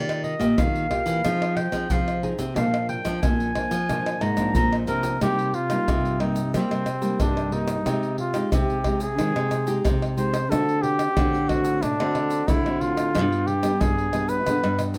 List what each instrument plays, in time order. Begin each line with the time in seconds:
Already playing: nylon-string guitar D#3 A#3 F4 G4, clarinet D5
0.09 pandeiro, tamborim, shaker
0.23 clarinet D#5, pandeiro
0.39 nylon-string guitar A#2 A#3 F4 G4, pandeiro, tamborim, shaker, surdo
0.57 nylon-string guitar A#2 D#3, clarinet F5, pandeiro, tamborim, shaker, surdo
0.75 pandeiro, shaker
0.91 nylon-string guitar A#3 F4 G4, pandeiro, tamborim, surdo
1.06 nylon-string guitar E3, pandeiro, shaker
1.24 nylon-string guitar F3 C4 D#4 G#4, pandeiro, tamborim, shaker, surdo
1.42 pandeiro, tamborim, shaker
1.56 clarinet G5, pandeiro, tamborim
1.72 nylon-string guitar F3 C4 D#4 G#4, pandeiro, tamborim, shaker, surdo
1.90 nylon-string guitar C3 F3, clarinet F5, pandeiro, shaker, surdo
2.08 pandeiro, tamborim, shaker
2.23 nylon-string guitar C4 D#4 G#4, pandeiro, surdo
2.39 nylon-string guitar C3, pandeiro, shaker, surdo
2.56 nylon-string guitar A#2 F3 A#3 D4, clarinet F5, pandeiro, tamborim, shaker, surdo
2.74 pandeiro, tamborim, shaker
2.89 clarinet G5, pandeiro
3.05 nylon-string guitar F3 A#3 D4, pandeiro, tamborim, shaker, surdo
3.23 nylon-string guitar A#2 F3, clarinet G#5, pandeiro, tamborim, shaker, surdo
3.40 pandeiro, shaker
3.55 nylon-string guitar F3 A#3 D4, pandeiro, tamborim, surdo
3.71 nylon-string guitar F3, pandeiro, shaker
3.89 nylon-string guitar A#2 F3 A#3 D4, pandeiro, tamborim, shaker, surdo
4.06 pandeiro, tamborim, shaker
4.21 nylon-string guitar G#2, clarinet A#5, pandeiro, tamborim
4.37 nylon-string guitar F3 A#3 D4, pandeiro, tamborim, shaker, surdo
4.55 nylon-string guitar A#2 F3, clarinet A#5, pandeiro, shaker, surdo
4.73 pandeiro, tamborim, shaker
4.87 nylon-string guitar C3 F3 A#3 D4, trumpet A#4, pandeiro, shaker
5.03 pandeiro, shaker, surdo
5.21 nylon-string guitar C3 G3 A#3 D#4, trumpet G4, pandeiro, tamborim, shaker, surdo
5.39 pandeiro, shaker
5.54 trumpet F4, pandeiro
5.70 nylon-string guitar G3 A#3 D#4, pandeiro, tamborim, shaker
5.88 nylon-string guitar G2 C3, pandeiro, tamborim, shaker, surdo
6.05 pandeiro, shaker
6.20 nylon-string guitar G3 A#3 D#4, trumpet D#4, pandeiro, tamborim
6.36 pandeiro, shaker
6.53 nylon-string guitar C3 G3 A#3 D#4, trumpet C4, pandeiro, tamborim, shaker, surdo
6.71 nylon-string guitar C3, pandeiro, tamborim, shaker
6.86 pandeiro, tamborim, shaker
7.02 nylon-string guitar G3 A#3 D#4, pandeiro, shaker
7.20 nylon-string guitar G2 C3, trumpet D4, pandeiro, tamborim, shaker, surdo
7.37 pandeiro, tamborim, shaker
7.52 nylon-string guitar G3 A#3 D#4, trumpet D#4, pandeiro
7.68 pandeiro, tamborim, shaker
7.86 nylon-string guitar C3 G#3 D#4 G4, pandeiro, tamborim, shaker, surdo
8.03 pandeiro, shaker
8.18 trumpet F4, pandeiro
8.34 nylon-string guitar G#3 D#4 G4, pandeiro, tamborim, shaker
8.52 nylon-string guitar C3, trumpet G4, pandeiro, tamborim, shaker, surdo
8.70 pandeiro, shaker
8.84 nylon-string guitar G#3 D#4 G4, pandeiro, tamborim, surdo
9.00 trumpet G#4, pandeiro, shaker
9.19 nylon-string guitar C3 D#3 G#3 D#4, pandeiro, tamborim, shaker, surdo
9.36 nylon-string guitar C3, pandeiro, tamborim, shaker
9.51 pandeiro, tamborim, shaker
9.67 nylon-string guitar G#3 D#4 G4, pandeiro, shaker
9.85 nylon-string guitar C3, pandeiro, tamborim, shaker, surdo
10.02 pandeiro, tamborim, shaker
10.17 nylon-string guitar G#3 D#4 G4, trumpet C5, pandeiro, shaker
10.34 pandeiro, tamborim, shaker
10.50 nylon-string guitar D3 A3 C4 F#4, trumpet A4, pandeiro, tamborim, shaker, surdo
10.69 pandeiro, shaker
10.82 trumpet G4, pandeiro
10.99 pandeiro, tamborim, shaker
11.16 nylon-string guitar A2 D3 A3 C4 F#4, pandeiro, tamborim, shaker, surdo
11.34 pandeiro, shaker
11.48 nylon-string guitar A3 C4 F#4, trumpet F#4, pandeiro, tamborim, surdo
11.65 pandeiro, shaker
11.82 nylon-string guitar A2 D3, trumpet D4, pandeiro, tamborim, shaker, surdo
12.00 nylon-string guitar D3 A3 C4 F#4, pandeiro, tamborim, shaker
12.15 pandeiro, tamborim
12.30 pandeiro, shaker
12.48 nylon-string guitar A2 D3, trumpet E4, pandeiro, tamborim, shaker, surdo
12.66 nylon-string guitar A3 C4 F#4, pandeiro, tamborim, shaker
12.81 trumpet F4, pandeiro
12.97 pandeiro, tamborim, shaker
13.15 nylon-string guitar G2 G3 B3 D4, pandeiro, tamborim, shaker, surdo
13.32 pandeiro, shaker
13.47 trumpet G4, pandeiro
13.63 nylon-string guitar G3 B3 D4, pandeiro, tamborim, shaker
13.81 nylon-string guitar G2, trumpet G#4, pandeiro, tamborim, shaker, surdo
13.98 pandeiro, shaker
14.13 nylon-string guitar G3 B3 D4, pandeiro, tamborim, shaker
14.29 trumpet B4, pandeiro, shaker
14.47 nylon-string guitar G2 D3 G3 B3 D4, pandeiro, tamborim, shaker, surdo
14.64 nylon-string guitar G2, pandeiro, tamborim, shaker
14.79 pandeiro, tamborim, shaker
14.94 nylon-string guitar G3, pandeiro, shaker